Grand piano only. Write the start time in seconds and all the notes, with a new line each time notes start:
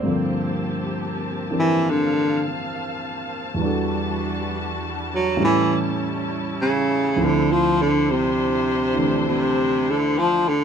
Already playing: D5
0.03 G2 D3 F3 A#3 C4
0.07 A4
1.50 E3 C4 D4 G4 A#4
3.54 E2 E3
3.59 G3 D4
3.64 F#4 A4
5.37 A2 E3 G3 C#4 A4
7.16 D2 D3 F3 C4 E4
8.94 D3 E3 A3 D4